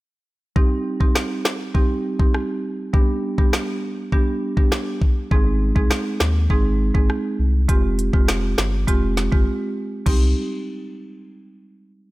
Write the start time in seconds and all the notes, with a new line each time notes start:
0.56 G3 C4 D#4 G4, kick
1.00 G3 C4 D#4 G4, kick
1.15 cross-stick, snare
1.45 cross-stick, snare
1.75 G3 C4 D#4 G4, kick
2.19 G3 C4 D#4 G4, kick
2.34 cross-stick
2.93 G3 B3 D4 G4, kick
3.38 G3 B3 D4 G4, kick
3.53 cross-stick, snare
4.12 G3 B3 D4 G4, kick
4.57 G3 B3 D4 G4, kick
4.72 cross-stick, snare
5.02 kick
5.31 G#1 G#3 C4 D#4 G#4, kick
5.76 C2 G#3 C4 D#4 G#4, kick
5.90 cross-stick, snare
6.20 D#2, cross-stick, snare
6.50 G#1 G#3 C4 D#4 G#4, kick
6.95 G#1 G#3 C4 D#4 G#4, kick
7.10 cross-stick
7.39 C2
7.69 F1 G#3 C4 F4 G4, kick, closed hi-hat
7.99 closed hi-hat
8.13 F1 G#3 C4 F4 G4, kick
8.28 cross-stick, snare, closed hi-hat
8.58 G1, cross-stick, snare, closed hi-hat
8.87 F1 G#3 C4 F4 G4, kick, closed hi-hat
9.17 snare, closed hi-hat
9.32 G1 G#3 C4 F4 G4, kick
10.06 C2 G3 C4 D#4 G4, kick, crash